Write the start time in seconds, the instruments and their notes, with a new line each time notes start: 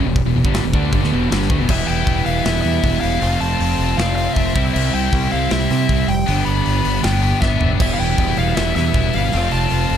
Already playing: pipe organ E3 B3 G4 B4
0.06 fingered electric bass E1, distorted electric guitar E2 B2
0.16 kick, open hi-hat
0.25 fingered electric bass E1, distorted electric guitar E2 B2
0.35 fingered electric bass E1, distorted electric guitar E2 B2
0.44 fingered electric bass G1, distorted electric guitar G2 D3 G3, kick
0.54 snare, open hi-hat
0.64 fingered electric bass E1, distorted electric guitar E2 B2
0.73 fingered electric bass D2, distorted electric guitar D3 A3 D4, kick
0.92 fingered electric bass G1, distorted electric guitar G2 D3, kick, open hi-hat
1.02 fingered electric bass D2, distorted electric guitar D3 A3, snare
1.11 fingered electric bass E1, distorted electric guitar E2 B2 E3
1.29 fingered electric bass G1, distorted electric guitar G2 D3 G3, snare, open hi-hat
1.42 snare
1.49 fingered electric bass D2, distorted electric guitar D3 A3, kick
1.59 fingered electric bass E1, distorted electric guitar E2 B2
1.69 fingered electric bass E1, distorted electric guitar E2 B2 E3 B3 E4, overdriven electric guitar G3, pipe organ E4 G4 B4 G5, lead electric guitar E5, kick, crash
1.75 distorted electric guitar B3 E4
1.84 fingered electric bass E1, distorted electric guitar B3 E4, lead electric guitar G5
1.88 distorted electric guitar B3 E4, open hi-hat
1.99 distorted electric guitar B3 E4
2.07 fingered electric bass E1, distorted electric guitar B3 E4, kick, open hi-hat
2.15 distorted electric guitar B3 E4
2.22 distorted electric guitar B3 E4
2.26 fingered electric bass E1, lead electric guitar F5, open hi-hat
2.31 distorted electric guitar B3 E4
2.37 distorted electric guitar B3 E4
2.44 fingered electric bass E1, distorted electric guitar E2 B2 E3 B3 E4, lead electric guitar E5, snare, open hi-hat
2.52 distorted electric guitar B3 E4
2.61 distorted electric guitar B3 E4, lead electric guitar E5, open hi-hat
2.65 fingered electric bass E2, distorted electric guitar B3 E4
2.76 distorted electric guitar B3 E4
2.84 fingered electric bass E1, distorted electric guitar B3 E4, kick, open hi-hat
2.91 distorted electric guitar B3 E4
2.98 distorted electric guitar B3 E4, lead electric guitar F5
3.03 fingered electric bass E1, distorted electric guitar B3 E4, open hi-hat
3.14 distorted electric guitar B3 E4
3.20 fingered electric bass F1, distorted electric guitar F2 C3 F3 C4 F4, overdriven electric guitar A3, pipe organ F4 A4 C5 A5, open hi-hat
3.27 distorted electric guitar C4 F4
3.36 distorted electric guitar C4 F4
3.41 fingered electric bass F1, distorted electric guitar C4, lead electric guitar A5, open hi-hat
3.45 distorted electric guitar F4
3.51 distorted electric guitar C4 F4
3.58 fingered electric bass F1, distorted electric guitar C4 F4, open hi-hat
3.66 distorted electric guitar C4 F4
3.75 fingered electric bass F1, distorted electric guitar C4 F4
3.80 distorted electric guitar C4, open hi-hat
3.84 distorted electric guitar F4
3.90 distorted electric guitar C4 F4
3.97 fingered electric bass F1, distorted electric guitar F2 C3 F3 C4 F4, lead electric guitar F5, snare, open hi-hat
4.05 distorted electric guitar C4 F4
4.14 distorted electric guitar C4 F4, lead electric guitar F5
4.18 distorted electric guitar C4, open hi-hat
4.24 distorted electric guitar F4
4.29 distorted electric guitar C4 F4
4.33 fingered electric bass F1, lead electric guitar E5, kick, open hi-hat
4.38 distorted electric guitar C4 F4
4.45 distorted electric guitar C4 F4
4.53 fingered electric bass C2, distorted electric guitar C3 G3 C4 E4, pipe organ E4 G4 G5, kick, open hi-hat
4.61 distorted electric guitar C4 E4
4.70 distorted electric guitar C4 E4
4.74 fingered electric bass C2, distorted electric guitar C4, lead electric guitar E5, crash
4.78 distorted electric guitar E4
4.84 distorted electric guitar C4 E4
4.93 fingered electric bass C2, distorted electric guitar C4 E4, lead electric guitar G5, open hi-hat
5.00 distorted electric guitar C4 E4
5.08 distorted electric guitar C4 E4
5.13 fingered electric bass C2, distorted electric guitar C4, kick, open hi-hat
5.17 distorted electric guitar E4
5.22 distorted electric guitar C4 E4
5.30 fingered electric bass C2, distorted electric guitar C3 G3 C4 E4, lead electric guitar F5, open hi-hat
5.38 distorted electric guitar C4 E4
5.46 distorted electric guitar C4 E4
5.51 fingered electric bass C2, distorted electric guitar C4, lead electric guitar E5, snare, open hi-hat
5.55 distorted electric guitar E4
5.61 distorted electric guitar C4 E4
5.70 fingered electric bass C3, distorted electric guitar C4 E4, lead electric guitar E5, snare, open hi-hat
5.77 distorted electric guitar C4 E4
5.84 distorted electric guitar C4 E4
5.89 fingered electric bass C2, distorted electric guitar C4, kick, open hi-hat
5.93 distorted electric guitar E4
6.01 distorted electric guitar C4 E4
6.08 fingered electric bass F1, lead electric guitar G5, open hi-hat
6.26 fingered electric bass G1, distorted electric guitar G2 D3 G3 B3 D4, pipe organ D4 B4, open hi-hat
6.35 distorted electric guitar B3 D4
6.42 distorted electric guitar B3 D4, lead electric guitar B5
6.46 fingered electric bass G1, distorted electric guitar B3, open hi-hat
6.51 distorted electric guitar D4
6.58 distorted electric guitar B3 D4
6.65 fingered electric bass G1, distorted electric guitar B3 D4, open hi-hat
6.72 distorted electric guitar B3 D4
6.79 distorted electric guitar B3 D4
6.85 fingered electric bass G1, distorted electric guitar B3 D4, open hi-hat
6.94 distorted electric guitar B3 D4
7.02 fingered electric bass G1, distorted electric guitar G2 D3 G3 B3 D4, lead electric guitar G5, snare, open hi-hat
7.10 distorted electric guitar B3 D4
7.18 distorted electric guitar B3 D4
7.22 distorted electric guitar B3, lead electric guitar G5, open hi-hat
7.26 distorted electric guitar D4
7.32 distorted electric guitar B3 D4
7.40 fingered electric bass G1, distorted electric guitar B3 D4, lead electric guitar E5, kick, snare
7.48 distorted electric guitar B3 D4
7.55 distorted electric guitar B3 D4
7.61 fingered electric bass F1, distorted electric guitar B3 D4, floor tom
7.71 distorted electric guitar B3 D4
7.79 fingered electric bass E1, distorted electric guitar E2 B2 E3 B3 E4, overdriven electric guitar G3, pipe organ E4 G4 B4, lead electric guitar E5, kick, crash
7.87 distorted electric guitar B3 E4
7.94 distorted electric guitar B3 E4, lead electric guitar F5
7.99 fingered electric bass E1, distorted electric guitar B3, lead electric guitar G5, open hi-hat
8.03 distorted electric guitar E4
8.10 distorted electric guitar B3 E4
8.16 fingered electric bass E1, distorted electric guitar B3 E4, kick, open hi-hat
8.25 distorted electric guitar B3 E4
8.33 distorted electric guitar B3 E4
8.37 fingered electric bass E1, distorted electric guitar B3, lead electric guitar F5, open hi-hat
8.41 distorted electric guitar E4
8.49 distorted electric guitar B3 E4
8.55 fingered electric bass E1, distorted electric guitar E2 B2 E3 B3 E4, lead electric guitar E5, snare, open hi-hat
8.63 distorted electric guitar B3 E4
8.71 distorted electric guitar B3 E4
8.76 fingered electric bass E2, distorted electric guitar B3 E4, lead electric guitar E5, snare, open hi-hat
8.86 distorted electric guitar B3 E4
8.94 fingered electric bass E1, distorted electric guitar B3 E4, kick, open hi-hat
9.02 distorted electric guitar B3 E4
9.09 distorted electric guitar B3 E4
9.13 fingered electric bass G1, distorted electric guitar B3, lead electric guitar F5, open hi-hat
9.18 distorted electric guitar E4
9.24 distorted electric guitar B3 E4
9.31 fingered electric bass F1, distorted electric guitar F2 C3 F3 C4 F4, overdriven electric guitar A3, pipe organ F4 A4 C5 A5, open hi-hat
9.40 distorted electric guitar C4 F4
9.49 fingered electric bass F1, distorted electric guitar C4 F4, lead electric guitar A5, open hi-hat
9.57 distorted electric guitar C4 F4
9.64 distorted electric guitar C4 F4
9.70 fingered electric bass F1, distorted electric guitar C4 F4, open hi-hat
9.80 distorted electric guitar C4 F4
9.88 fingered electric bass F1, distorted electric guitar C4 F4, open hi-hat